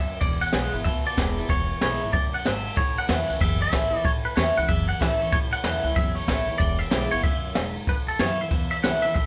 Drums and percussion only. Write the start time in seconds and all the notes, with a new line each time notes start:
0.09 ride
0.21 kick, ride
0.41 ride
0.53 snare, ride
0.73 ride
0.85 kick, ride
1.06 ride
1.17 kick, snare, ride
1.38 ride
1.49 kick, ride
1.69 ride
1.81 snare, ride
2.01 ride
2.13 kick, ride
2.34 ride
2.46 snare, ride
2.66 ride
2.77 kick, ride
2.97 ride
3.09 snare, ride
3.29 ride
3.41 kick, ride
3.61 ride
3.73 kick, snare, ride
3.93 ride
4.05 kick, ride
4.26 ride
4.37 snare, ride
4.57 ride
4.69 kick, ride
4.90 ride
5.01 kick, snare, ride
5.21 ride
5.33 kick, ride
5.53 ride
5.64 snare, ride
5.84 ride
5.96 kick, ride
6.16 ride
6.28 kick, snare, ride
6.48 ride
6.60 kick, ride
6.80 ride
6.91 snare, ride
7.12 ride
7.23 kick, ride
7.44 ride
7.55 snare, ride
7.76 ride
7.87 kick, ride
8.08 ride
8.19 snare, ride
8.40 ride
8.51 kick, ride
8.71 ride
8.84 snare, ride
9.04 snare, ride
9.15 kick, ride